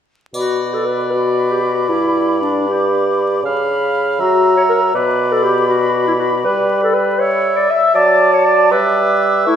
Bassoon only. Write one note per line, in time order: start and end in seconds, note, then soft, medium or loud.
0.34 1.85 B2 soft
1.89 3.41 G2 soft
3.43 4.21 C#3 soft
4.20 4.94 F#3 soft
4.94 6.47 B2 medium
6.45 7.68 G3 medium
7.95 8.72 F#3 medium
8.71 9.48 G3 medium
9.47 9.56 A3 medium